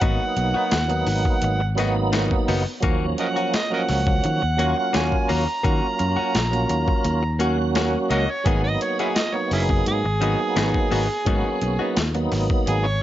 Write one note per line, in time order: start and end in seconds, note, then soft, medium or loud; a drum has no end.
0.00 0.17 G#1 medium
0.00 0.23 D#3 medium
0.00 0.73 F#3 medium
0.00 0.73 A#3 medium
0.00 0.73 B3 medium
0.00 0.23 B3 medium
0.00 0.73 D#4 medium
0.00 0.24 D#4 medium
0.00 0.24 F#4 medium
0.00 1.74 F#5 medium
0.00 kick loud
0.00 closed hi-hat medium
0.37 0.52 B1 medium
0.37 muted clean electric guitar stroke soft
0.37 closed hi-hat medium
0.54 0.77 B3 soft
0.54 0.76 D#4 soft
0.54 0.75 F#4 medium
0.71 1.02 D#2 medium
0.71 snare loud
0.71 closed hi-hat medium
0.88 1.61 F#3 medium
0.88 1.61 A#3 medium
0.88 1.61 B3 medium
0.88 1.61 D#4 medium
0.88 muted clean electric guitar stroke soft
0.88 closed hi-hat soft
1.07 1.22 G#1 medium
1.07 muted clean electric guitar stroke soft
1.07 open hi-hat medium
1.25 muted clean electric guitar stroke soft
1.25 kick medium
1.42 2.32 G#1 medium
1.42 muted clean electric guitar stroke soft
1.42 closed hi-hat medium
1.60 muted clean electric guitar stroke soft
1.75 1.96 D#3 medium
1.75 2.63 F#3 medium
1.75 2.63 A#3 medium
1.75 2.63 B3 medium
1.75 1.96 B3 medium
1.75 2.64 D#4 medium
1.75 snare soft
1.75 closed hi-hat medium
1.79 1.95 D#4 medium
1.79 1.95 F#4 medium
1.96 muted clean electric guitar stroke soft
2.13 2.34 D#3 medium
2.13 2.35 B3 medium
2.13 2.35 D#4 medium
2.13 2.35 F#4 medium
2.13 snare loud
2.13 closed hi-hat medium
2.31 kick medium
2.48 2.64 F#1 medium
2.48 2.66 D#3 medium
2.48 2.66 B3 medium
2.48 2.66 D#4 medium
2.48 2.65 F#4 medium
2.48 snare soft
2.48 open hi-hat medium
2.67 muted clean electric guitar stroke soft
2.80 3.13 D#2 medium
2.80 3.54 F3 medium
2.80 3.53 F#3 medium
2.80 3.54 A#3 medium
2.80 3.05 A#3 medium
2.80 3.54 C#4 medium
2.80 3.05 C#4 loud
2.80 3.05 F#4 medium
2.80 kick loud
2.80 closed hi-hat medium
3.18 3.27 A#4 medium
3.18 3.27 D#5 medium
3.18 3.53 F#5 medium
3.18 muted clean electric guitar stroke soft
3.18 closed hi-hat medium
3.36 3.58 C#4 soft
3.36 3.57 F#4 medium
3.36 closed hi-hat soft
3.54 3.71 D#5 medium
3.54 snare loud
3.54 closed hi-hat medium
3.70 4.43 F3 medium
3.70 4.42 F#3 medium
3.70 4.43 A#3 medium
3.70 4.43 C#4 medium
3.70 3.81 A#4 medium
3.70 3.80 D#5 medium
3.70 4.75 F#5 medium
3.70 muted clean electric guitar stroke soft
3.89 4.19 C#2 medium
3.89 muted clean electric guitar stroke soft
3.89 snare soft
3.89 open hi-hat medium
4.07 muted clean electric guitar stroke soft
4.07 kick medium
4.24 4.40 D#3 medium
4.24 muted clean electric guitar stroke soft
4.24 closed hi-hat medium
4.42 4.72 D#2 medium
4.42 muted clean electric guitar stroke soft
4.57 5.44 F#3 medium
4.57 5.44 A#3 medium
4.57 4.77 A#3 medium
4.57 5.45 C#4 medium
4.57 4.76 C#4 medium
4.57 5.45 F4 medium
4.57 4.76 F#4 medium
4.57 closed hi-hat medium
4.77 4.94 F#5 medium
4.77 muted clean electric guitar stroke soft
4.93 5.10 D#2 medium
4.93 5.15 A#3 medium
4.93 5.16 C#4 medium
4.93 5.16 F#4 medium
4.93 5.31 G#5 medium
4.93 snare loud
4.93 closed hi-hat medium
5.12 kick medium
5.29 5.45 D#2 medium
5.29 5.47 A#3 medium
5.29 5.47 C#4 medium
5.29 5.46 F#4 medium
5.29 7.36 A#5 loud
5.29 open hi-hat medium
5.48 muted clean electric guitar stroke soft
5.63 5.80 D#3 medium
5.63 6.35 F#3 medium
5.63 6.35 A#3 medium
5.63 5.85 A#3 medium
5.63 5.86 C#4 medium
5.63 6.36 C#4 medium
5.63 6.36 F4 medium
5.63 5.86 F#4 medium
5.63 kick loud
5.63 closed hi-hat medium
5.99 6.15 F#2 medium
5.99 muted clean electric guitar stroke soft
5.99 closed hi-hat medium
6.17 6.39 C#4 soft
6.17 6.38 F#4 medium
6.17 muted fingered electric bass stroke soft
6.35 6.65 A#1 medium
6.35 snare loud
6.35 closed hi-hat medium
6.51 7.23 F#3 medium
6.51 7.24 A#3 medium
6.51 7.24 C#4 medium
6.51 7.24 F4 medium
6.51 muted clean electric guitar stroke soft
6.51 closed hi-hat soft
6.69 6.85 D#2 medium
6.69 muted clean electric guitar stroke soft
6.69 closed hi-hat medium
6.88 muted clean electric guitar stroke soft
6.88 kick medium
7.04 7.95 D#2 medium
7.04 muted clean electric guitar stroke soft
7.04 closed hi-hat medium
7.23 muted clean electric guitar stroke soft
7.39 8.26 F#3 medium
7.39 7.58 A#3 medium
7.39 8.26 A#3 medium
7.39 8.26 C#4 medium
7.39 7.58 C#4 medium
7.39 8.27 F#4 loud
7.39 7.57 F#4 medium
7.39 closed hi-hat medium
7.58 muted clean electric guitar stroke soft
7.75 7.97 A#3 medium
7.75 7.97 C#4 medium
7.75 7.98 F#4 medium
7.75 snare loud
7.75 closed hi-hat medium
8.10 8.26 C#2 medium
8.10 8.28 A#3 medium
8.10 8.29 C#4 medium
8.10 8.19 F#4 medium
8.10 8.28 F#4 medium
8.10 8.17 A#4 medium
8.10 8.31 D#5 medium
8.10 closed hi-hat medium
8.30 8.48 C#5 medium
8.44 8.76 G#1 medium
8.44 8.67 D#3 medium
8.44 9.16 F#3 medium
8.44 9.16 A#3 medium
8.44 9.16 B3 medium
8.44 8.68 B3 medium
8.44 9.17 D#4 medium
8.44 8.68 D#4 medium
8.44 8.68 F#4 medium
8.44 8.63 G#4 medium
8.44 kick loud
8.44 closed hi-hat medium
8.64 8.80 D#5 medium
8.81 8.98 C#5 medium
8.81 muted clean electric guitar stroke soft
8.81 closed hi-hat medium
8.99 9.21 B3 soft
8.99 9.06 C#4 medium
8.99 9.20 D#4 soft
8.99 9.08 E4 medium
8.99 9.20 F#4 medium
8.99 9.18 G#4 medium
8.99 closed hi-hat soft
9.16 9.36 D#5 medium
9.16 snare loud
9.16 closed hi-hat medium
9.32 10.04 F#3 medium
9.32 10.05 A#3 medium
9.32 10.05 B3 medium
9.32 10.05 D#4 medium
9.32 9.50 C#5 medium
9.32 muted clean electric guitar stroke soft
9.51 9.81 F#1 medium
9.51 9.62 C#4 medium
9.51 9.62 E4 medium
9.51 9.86 G#4 medium
9.51 muted clean electric guitar stroke soft
9.51 open hi-hat medium
9.69 muted clean electric guitar stroke soft
9.69 kick medium
9.86 10.02 G#2 medium
9.86 11.94 G#4 loud
9.86 muted clean electric guitar stroke soft
9.86 closed hi-hat medium
10.04 10.34 G#1 medium
10.04 muted clean electric guitar stroke soft
10.20 10.39 D#3 medium
10.20 11.07 F#3 medium
10.20 11.07 A#3 medium
10.20 11.07 B3 medium
10.20 10.40 B3 medium
10.20 11.07 D#4 medium
10.20 10.40 D#4 medium
10.20 10.39 F#4 medium
10.20 closed hi-hat medium
10.40 muted clean electric guitar stroke soft
10.56 10.72 G#1 medium
10.56 10.78 D#3 medium
10.56 10.78 B3 medium
10.56 10.78 D#4 medium
10.56 10.78 F#4 medium
10.56 snare loud
10.56 closed hi-hat medium
10.74 kick medium
10.91 11.07 G#1 medium
10.91 11.09 D#3 medium
10.91 11.09 B3 medium
10.91 11.08 D#4 medium
10.91 11.08 F#4 medium
10.91 open hi-hat medium
11.09 muted clean electric guitar stroke soft
11.25 11.42 G#2 loud
11.25 11.48 D#3 medium
11.25 11.97 F#3 medium
11.25 11.97 A#3 medium
11.25 11.98 B3 medium
11.25 11.48 B3 medium
11.25 11.98 C#4 medium
11.25 11.49 D#4 medium
11.25 11.49 F#4 medium
11.25 kick loud
11.25 closed hi-hat medium
11.62 11.77 B1 medium
11.62 muted clean electric guitar stroke soft
11.62 closed hi-hat medium
11.79 12.01 B3 medium
11.79 12.01 D#4 medium
11.79 12.00 F#4 medium
11.97 12.27 D#2 medium
11.97 snare loud
11.97 closed hi-hat medium
12.14 12.86 F#3 medium
12.14 12.86 A#3 medium
12.14 12.86 B3 medium
12.14 12.87 D#4 medium
12.14 muted clean electric guitar stroke medium
12.14 closed hi-hat soft
12.32 12.47 G#1 medium
12.32 muted clean electric guitar stroke soft
12.32 snare soft
12.32 open hi-hat medium
12.50 muted clean electric guitar stroke soft
12.50 kick medium
12.67 13.03 G#1 medium
12.67 12.88 G#4 medium
12.67 muted clean electric guitar stroke soft
12.67 closed hi-hat medium
12.85 13.02 C#5 loud
12.85 muted clean electric guitar stroke soft